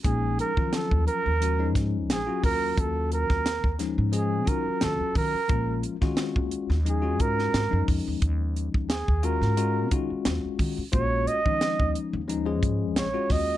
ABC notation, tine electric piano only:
X:1
M:4/4
L:1/16
Q:"Swing 16ths" 1/4=88
K:Ebm
V:1 name="Tine electric piano"
[F,A,DE]3 [F,G,DF]4 z [F,A,DG] [F,A,DE]4 [G,DFG]3- | [G,DFG]4 z2 [F,A,DE]2 [F,A,DA]2 [G,DFG]4- [G,DFG] z | [F,A,DF]3 [A,DFG]4 z [F,A,DE] [A,DFG]4 [F,A,DE]3- | [F,A,DE]4 z2 [A,DFG]2 [A,DFG]2 [A,DFG]4- [A,DFG] z |
[A,DFG]3 [F,A,DE]4 z [F,A,DE] [F,A,DA]4 [A,DFG]3 |]